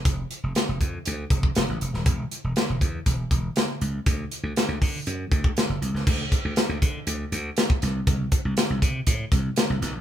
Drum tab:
CC |----------------|----------------|----------------|x---------------|
HH |x-x-x-x-x-x-x-x-|x-x-x-x-x-x-x-x-|x-x-x-o-x-x-x-x-|--x-x-x-x-x-x-x-|
SD |----o-------o--o|----o-------o---|----o-------o--o|----o-------o-o-|
BD |o-----o---oo----|o-----o-o-o-----|o-----o---oo----|o-o---o------o--|

CC |----------------|
HH |x-x-x-x-x-x-x-x-|
SD |----o-------o-o-|
BD |o-o---o-o-o-----|